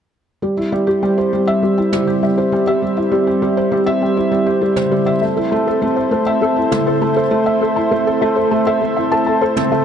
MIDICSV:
0, 0, Header, 1, 5, 480
1, 0, Start_track
1, 0, Tempo, 600000
1, 336, Time_signature, 4, 2, 24, 8
1, 7878, End_track
2, 0, Start_track
2, 0, Title_t, "Synth arpeggio sound"
2, 0, Program_c, 0, 84
2, 342, Note_on_c, 0, 67, 74
2, 453, Note_off_c, 0, 67, 0
2, 581, Note_on_c, 0, 76, 66
2, 657, Note_off_c, 0, 76, 0
2, 702, Note_on_c, 0, 67, 68
2, 813, Note_off_c, 0, 67, 0
2, 823, Note_on_c, 0, 79, 76
2, 898, Note_off_c, 0, 79, 0
2, 945, Note_on_c, 0, 67, 67
2, 1054, Note_off_c, 0, 67, 0
2, 1182, Note_on_c, 0, 76, 73
2, 1258, Note_off_c, 0, 76, 0
2, 1305, Note_on_c, 0, 67, 78
2, 1415, Note_off_c, 0, 67, 0
2, 1423, Note_on_c, 0, 79, 66
2, 1498, Note_off_c, 0, 79, 0
2, 1544, Note_on_c, 0, 67, 66
2, 1654, Note_off_c, 0, 67, 0
2, 1783, Note_on_c, 0, 76, 76
2, 1858, Note_off_c, 0, 76, 0
2, 1902, Note_on_c, 0, 67, 70
2, 2013, Note_off_c, 0, 67, 0
2, 2025, Note_on_c, 0, 79, 70
2, 2099, Note_off_c, 0, 79, 0
2, 2144, Note_on_c, 0, 67, 70
2, 2254, Note_off_c, 0, 67, 0
2, 2380, Note_on_c, 0, 76, 78
2, 2456, Note_off_c, 0, 76, 0
2, 2500, Note_on_c, 0, 67, 66
2, 2612, Note_off_c, 0, 67, 0
2, 2619, Note_on_c, 0, 79, 68
2, 2696, Note_off_c, 0, 79, 0
2, 2740, Note_on_c, 0, 67, 83
2, 2852, Note_off_c, 0, 67, 0
2, 2976, Note_on_c, 0, 76, 76
2, 3055, Note_off_c, 0, 76, 0
2, 3098, Note_on_c, 0, 67, 73
2, 3211, Note_off_c, 0, 67, 0
2, 3219, Note_on_c, 0, 79, 78
2, 3296, Note_off_c, 0, 79, 0
2, 3341, Note_on_c, 0, 67, 71
2, 3452, Note_off_c, 0, 67, 0
2, 3577, Note_on_c, 0, 76, 75
2, 3655, Note_off_c, 0, 76, 0
2, 3695, Note_on_c, 0, 67, 81
2, 3809, Note_off_c, 0, 67, 0
2, 3816, Note_on_c, 0, 79, 68
2, 3895, Note_off_c, 0, 79, 0
2, 3933, Note_on_c, 0, 67, 69
2, 4048, Note_off_c, 0, 67, 0
2, 4173, Note_on_c, 0, 76, 80
2, 4253, Note_off_c, 0, 76, 0
2, 4291, Note_on_c, 0, 69, 77
2, 4407, Note_off_c, 0, 69, 0
2, 4410, Note_on_c, 0, 81, 70
2, 4491, Note_off_c, 0, 81, 0
2, 4532, Note_on_c, 0, 69, 70
2, 4648, Note_off_c, 0, 69, 0
2, 4774, Note_on_c, 0, 76, 72
2, 4853, Note_off_c, 0, 76, 0
2, 4895, Note_on_c, 0, 69, 77
2, 5009, Note_off_c, 0, 69, 0
2, 5015, Note_on_c, 0, 81, 71
2, 5094, Note_off_c, 0, 81, 0
2, 5135, Note_on_c, 0, 69, 78
2, 5250, Note_off_c, 0, 69, 0
2, 5375, Note_on_c, 0, 76, 69
2, 5454, Note_off_c, 0, 76, 0
2, 5495, Note_on_c, 0, 69, 76
2, 5609, Note_off_c, 0, 69, 0
2, 5615, Note_on_c, 0, 81, 83
2, 5694, Note_off_c, 0, 81, 0
2, 5732, Note_on_c, 0, 69, 74
2, 5848, Note_off_c, 0, 69, 0
2, 5972, Note_on_c, 0, 76, 74
2, 6052, Note_off_c, 0, 76, 0
2, 6092, Note_on_c, 0, 69, 74
2, 6208, Note_off_c, 0, 69, 0
2, 6209, Note_on_c, 0, 81, 82
2, 6291, Note_off_c, 0, 81, 0
2, 6331, Note_on_c, 0, 69, 72
2, 6447, Note_off_c, 0, 69, 0
2, 6571, Note_on_c, 0, 76, 81
2, 6652, Note_off_c, 0, 76, 0
2, 6691, Note_on_c, 0, 69, 70
2, 6807, Note_off_c, 0, 69, 0
2, 6810, Note_on_c, 0, 81, 77
2, 6892, Note_off_c, 0, 81, 0
2, 6933, Note_on_c, 0, 69, 70
2, 7048, Note_off_c, 0, 69, 0
2, 7173, Note_on_c, 0, 76, 71
2, 7253, Note_off_c, 0, 76, 0
2, 7295, Note_on_c, 0, 69, 70
2, 7410, Note_off_c, 0, 69, 0
2, 7412, Note_on_c, 0, 81, 78
2, 7492, Note_off_c, 0, 81, 0
2, 7535, Note_on_c, 0, 69, 81
2, 7649, Note_off_c, 0, 69, 0
2, 7774, Note_on_c, 0, 76, 72
2, 7853, Note_off_c, 0, 76, 0
2, 7878, End_track
3, 0, Start_track
3, 0, Title_t, "Felt piano"
3, 0, Program_c, 1, 0
3, 338, Note_on_c, 1, 55, 66
3, 451, Note_off_c, 1, 55, 0
3, 458, Note_on_c, 1, 64, 61
3, 474, Control_c, 1, 64, 127
3, 571, Note_off_c, 1, 64, 0
3, 578, Note_on_c, 1, 55, 87
3, 691, Note_off_c, 1, 55, 0
3, 695, Note_on_c, 1, 67, 65
3, 809, Note_off_c, 1, 67, 0
3, 820, Note_on_c, 1, 55, 89
3, 932, Note_off_c, 1, 55, 0
3, 942, Note_on_c, 1, 72, 63
3, 1053, Note_off_c, 1, 72, 0
3, 1063, Note_on_c, 1, 55, 87
3, 1128, Note_off_c, 1, 55, 0
3, 1179, Note_on_c, 1, 76, 86
3, 1292, Note_off_c, 1, 76, 0
3, 1300, Note_on_c, 1, 55, 68
3, 1412, Note_off_c, 1, 55, 0
3, 1421, Note_on_c, 1, 64, 69
3, 1532, Note_off_c, 1, 64, 0
3, 1540, Note_on_c, 1, 55, 78
3, 1652, Note_off_c, 1, 55, 0
3, 1658, Note_on_c, 1, 67, 66
3, 1771, Note_off_c, 1, 67, 0
3, 1781, Note_on_c, 1, 55, 80
3, 1893, Note_off_c, 1, 55, 0
3, 1902, Note_on_c, 1, 72, 68
3, 2013, Note_off_c, 1, 72, 0
3, 2018, Note_on_c, 1, 55, 88
3, 2085, Note_off_c, 1, 55, 0
3, 2138, Note_on_c, 1, 76, 85
3, 2251, Note_off_c, 1, 76, 0
3, 2257, Note_on_c, 1, 55, 67
3, 2371, Note_off_c, 1, 55, 0
3, 2374, Note_on_c, 1, 64, 64
3, 2489, Note_off_c, 1, 64, 0
3, 2492, Note_on_c, 1, 55, 92
3, 2608, Note_off_c, 1, 55, 0
3, 2616, Note_on_c, 1, 67, 64
3, 2730, Note_off_c, 1, 67, 0
3, 2737, Note_on_c, 1, 55, 89
3, 2850, Note_off_c, 1, 55, 0
3, 2857, Note_on_c, 1, 72, 68
3, 2970, Note_off_c, 1, 72, 0
3, 2973, Note_on_c, 1, 55, 88
3, 3043, Note_off_c, 1, 55, 0
3, 3091, Note_on_c, 1, 76, 95
3, 3208, Note_off_c, 1, 76, 0
3, 3215, Note_on_c, 1, 55, 72
3, 3329, Note_off_c, 1, 55, 0
3, 3335, Note_on_c, 1, 64, 64
3, 3449, Note_off_c, 1, 64, 0
3, 3452, Note_on_c, 1, 55, 84
3, 3568, Note_off_c, 1, 55, 0
3, 3571, Note_on_c, 1, 67, 71
3, 3688, Note_off_c, 1, 67, 0
3, 3691, Note_on_c, 1, 55, 82
3, 3807, Note_off_c, 1, 55, 0
3, 3810, Note_on_c, 1, 72, 72
3, 3927, Note_off_c, 1, 72, 0
3, 3932, Note_on_c, 1, 55, 90
3, 4002, Note_off_c, 1, 55, 0
3, 4051, Note_on_c, 1, 76, 92
3, 4167, Note_off_c, 1, 76, 0
3, 4173, Note_on_c, 1, 57, 70
3, 4186, Control_c, 1, 64, 0
3, 4288, Note_off_c, 1, 57, 0
3, 4295, Note_on_c, 1, 64, 72
3, 4324, Control_c, 1, 64, 127
3, 4410, Note_off_c, 1, 64, 0
3, 4416, Note_on_c, 1, 57, 94
3, 4530, Note_off_c, 1, 57, 0
3, 4539, Note_on_c, 1, 69, 72
3, 4652, Note_off_c, 1, 69, 0
3, 4654, Note_on_c, 1, 57, 95
3, 4769, Note_off_c, 1, 57, 0
3, 4771, Note_on_c, 1, 72, 65
3, 4887, Note_off_c, 1, 72, 0
3, 4890, Note_on_c, 1, 57, 88
3, 4961, Note_off_c, 1, 57, 0
3, 5011, Note_on_c, 1, 76, 89
3, 5128, Note_off_c, 1, 76, 0
3, 5132, Note_on_c, 1, 57, 76
3, 5248, Note_off_c, 1, 57, 0
3, 5251, Note_on_c, 1, 64, 67
3, 5368, Note_off_c, 1, 64, 0
3, 5372, Note_on_c, 1, 57, 81
3, 5488, Note_off_c, 1, 57, 0
3, 5493, Note_on_c, 1, 69, 74
3, 5609, Note_off_c, 1, 69, 0
3, 5613, Note_on_c, 1, 57, 88
3, 5728, Note_off_c, 1, 57, 0
3, 5731, Note_on_c, 1, 72, 75
3, 5847, Note_off_c, 1, 72, 0
3, 5848, Note_on_c, 1, 57, 100
3, 5920, Note_off_c, 1, 57, 0
3, 5968, Note_on_c, 1, 76, 84
3, 6086, Note_off_c, 1, 76, 0
3, 6089, Note_on_c, 1, 57, 68
3, 6206, Note_off_c, 1, 57, 0
3, 6211, Note_on_c, 1, 64, 67
3, 6328, Note_off_c, 1, 64, 0
3, 6331, Note_on_c, 1, 57, 89
3, 6447, Note_off_c, 1, 57, 0
3, 6456, Note_on_c, 1, 69, 75
3, 6570, Note_off_c, 1, 69, 0
3, 6574, Note_on_c, 1, 57, 97
3, 6689, Note_off_c, 1, 57, 0
3, 6689, Note_on_c, 1, 72, 68
3, 6807, Note_off_c, 1, 72, 0
3, 6812, Note_on_c, 1, 57, 92
3, 6882, Note_off_c, 1, 57, 0
3, 6934, Note_on_c, 1, 76, 91
3, 7049, Note_off_c, 1, 76, 0
3, 7053, Note_on_c, 1, 57, 76
3, 7168, Note_off_c, 1, 57, 0
3, 7173, Note_on_c, 1, 64, 66
3, 7289, Note_off_c, 1, 64, 0
3, 7293, Note_on_c, 1, 81, 84
3, 7363, Note_off_c, 1, 81, 0
3, 7411, Note_on_c, 1, 69, 70
3, 7528, Note_off_c, 1, 69, 0
3, 7531, Note_on_c, 1, 72, 71
3, 7647, Note_off_c, 1, 72, 0
3, 7653, Note_on_c, 1, 60, 89
3, 7768, Note_off_c, 1, 60, 0
3, 7774, Note_on_c, 1, 57, 96
3, 7878, Note_off_c, 1, 57, 0
3, 7878, End_track
4, 0, Start_track
4, 0, Title_t, "Analog synth pad"
4, 0, Program_c, 2, 89
4, 337, Note_on_c, 2, 64, 63
4, 338, Note_on_c, 2, 60, 66
4, 339, Note_on_c, 2, 55, 70
4, 340, Note_on_c, 2, 72, 82
4, 4145, Note_off_c, 2, 55, 0
4, 4173, Note_on_c, 2, 57, 74
4, 7878, Note_off_c, 2, 57, 0
4, 7878, Note_off_c, 2, 60, 0
4, 7878, Note_off_c, 2, 64, 0
4, 7878, Note_off_c, 2, 72, 0
4, 7878, End_track
5, 0, Start_track
5, 0, Title_t, "Drums"
5, 1541, Note_on_c, 9, 45, 51
5, 1621, Note_off_c, 9, 45, 0
5, 3811, Note_on_c, 9, 45, 57
5, 3891, Note_off_c, 9, 45, 0
5, 5374, Note_on_c, 9, 45, 57
5, 5454, Note_off_c, 9, 45, 0
5, 7652, Note_on_c, 9, 45, 56
5, 7732, Note_off_c, 9, 45, 0
5, 7878, End_track
0, 0, End_of_file